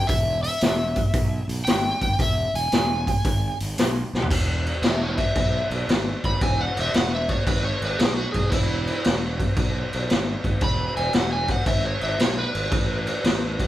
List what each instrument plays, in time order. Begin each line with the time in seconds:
0.07 fingered electric bass E1, electric slide guitar E5, kick, open hi-hat
0.43 electric slide guitar E5, open hi-hat
0.61 fingered electric bass E1, snare, open hi-hat
0.96 kick, open hi-hat
1.14 fingered electric bass B1, kick, open hi-hat
1.48 fingered electric bass B1, open hi-hat
1.65 fingered electric bass G#1, electric slide guitar G5, snare, open hi-hat
2.01 fingered electric bass G#1, electric slide guitar G5, kick, open hi-hat
2.19 fingered electric bass E1, electric slide guitar E5, kick, open hi-hat
2.54 fingered electric bass E1, electric slide guitar G#5, open hi-hat
2.72 fingered electric bass E1, snare, open hi-hat
3.07 kick, open hi-hat
3.25 fingered electric bass G#1, kick, open hi-hat
3.60 fingered electric bass G#1, open hi-hat
3.78 fingered electric bass B1, snare, open hi-hat
4.13 fingered electric bass B1, snare
4.22 floor tom
4.31 fingered electric bass E1, kick, crash
4.66 crash
4.82 fingered electric bass E1, electric slide guitar G#4 E5, snare, crash
5.01 electric slide guitar E4 C#5
5.17 electric slide guitar E5, kick, crash
5.36 fingered electric bass B1, kick, crash
5.71 fingered electric bass B1, crash
5.88 fingered electric bass G#1, snare, crash
6.24 fingered electric bass G#1, electric slide guitar B5, kick, crash
6.41 fingered electric bass E1, electric slide guitar G#5, kick, crash
6.61 electric slide guitar F#5
6.77 fingered electric bass E1, electric slide guitar E5, crash
6.94 fingered electric bass E1, electric slide guitar F#5, snare, crash
7.15 electric slide guitar E5
7.29 electric slide guitar C#5, kick, crash
7.46 fingered electric bass G#1, electric slide guitar B4, kick, crash
7.65 electric slide guitar C#5
7.82 fingered electric bass G#1, electric slide guitar B4, crash
7.99 fingered electric bass B1, electric slide guitar G#4, snare, crash
8.16 electric slide guitar F#4
8.32 fingered electric bass B1, electric slide guitar G#4, kick, crash
8.50 fingered electric bass E1, electric slide guitar E4, kick, crash
8.87 crash
9.04 fingered electric bass E1, snare, crash
9.40 kick, crash
9.57 fingered electric bass B1, kick, crash
9.93 fingered electric bass B1, crash
10.10 fingered electric bass G#1, snare, crash
10.44 fingered electric bass G#1, kick, crash
10.61 fingered electric bass E1, electric slide guitar B5, kick, crash
10.97 fingered electric bass E1, electric slide guitar G#5, crash
11.13 fingered electric bass E1, electric slide guitar F#5, snare, crash
11.33 electric slide guitar G#5
11.48 electric slide guitar F#5, kick, crash
11.66 fingered electric bass G#1, electric slide guitar E5, kick, crash
11.85 electric slide guitar C#5
12.01 fingered electric bass G#1, electric slide guitar E5, crash
12.19 fingered electric bass B1, electric slide guitar C#5, snare, crash
12.38 electric slide guitar B4
12.55 fingered electric bass G#1, crash
12.72 fingered electric bass A1, kick, crash
13.07 crash
13.24 fingered electric bass A1, snare, crash
13.60 kick, crash